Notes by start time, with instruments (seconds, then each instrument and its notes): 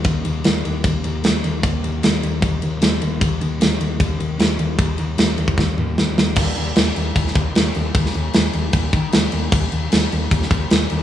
0.04 picked electric bass D#2, kick, ride
0.25 picked electric bass D#2, ride
0.44 picked electric bass D#2, snare, ride
0.65 picked electric bass D#2, ride
0.84 picked electric bass D#2, kick, ride
1.04 picked electric bass D#2, ride
1.24 picked electric bass D#2, snare, ride
1.44 picked electric bass D#2, ride
1.63 picked electric bass D#2, kick, ride
1.84 picked electric bass D#2, ride
2.03 picked electric bass D#2, snare, ride
2.23 picked electric bass D#2, ride
2.42 picked electric bass D#2, kick, ride
2.62 picked electric bass D#2, ride
2.82 picked electric bass D#2, snare, ride
3.02 picked electric bass D#2, ride
3.21 picked electric bass D#2, kick, ride
3.41 picked electric bass D#2, ride
3.61 picked electric bass D#2, snare, ride
3.80 picked electric bass D#2, ride
4.00 picked electric bass D#2, kick, ride
4.20 picked electric bass D#2, ride
4.39 picked electric bass D#2, snare, ride
4.59 picked electric bass D#2, ride
4.79 picked electric bass D#2, kick, ride
4.98 picked electric bass D#2, ride
5.18 picked electric bass D#2, snare, ride
5.38 picked electric bass D#2, ride
5.48 kick
5.58 picked electric bass D#2, kick, snare
5.78 picked electric bass D#2, mid tom
5.98 picked electric bass D#2, snare
6.18 picked electric bass D#2, snare
6.36 picked electric bass D#2, kick, crash
6.56 picked electric bass D#2, crash
6.76 picked electric bass D#2, snare, crash
6.96 picked electric bass D#2, crash
7.16 picked electric bass D#2, kick, crash
7.27 snare
7.35 picked electric bass D#2, kick, crash
7.55 picked electric bass D#2, snare, crash
7.75 picked electric bass D#2, crash
7.95 picked electric bass D#2, kick, crash
8.06 snare
8.14 picked electric bass D#2, crash
8.34 picked electric bass D#2, snare, crash
8.53 picked electric bass D#2, crash
8.73 picked electric bass D#2, kick, crash
8.93 picked electric bass D#3, kick, crash
9.12 picked electric bass D#2, snare, crash
9.32 picked electric bass D#2, crash
9.52 picked electric bass D#2, kick, crash
9.72 picked electric bass D#2, crash
9.92 picked electric bass D#2, snare, crash
10.12 picked electric bass D#2, crash
10.31 picked electric bass D#2, kick, crash
10.42 snare
10.51 picked electric bass D#2, kick, crash
10.70 picked electric bass D#2, snare, crash
10.90 picked electric bass D#2, crash